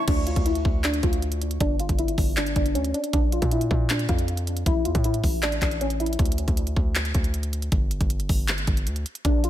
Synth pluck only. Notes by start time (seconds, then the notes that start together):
0.08 D4 D5
0.27 F4 F5
0.46 E4 E5
0.84 D4 D5
1.03 F4 F5
1.61 D4 D5
1.80 F4 F5
1.99 E4 E5
2.37 D4 D5
2.56 D4 D5
2.75 C#4 C#5
2.94 D4 D5
3.13 D4 D5
3.32 F4 F5
3.52 E4 E5
3.90 D4 D5
4.09 F4 F5
4.67 E4 E5
4.85 F4 F5
5.05 E4 E5
5.43 D4 D5
5.62 D4 D5
5.81 C#4 C#5
6.00 E4 E5
9.25 D4 D5
9.44 F4 F5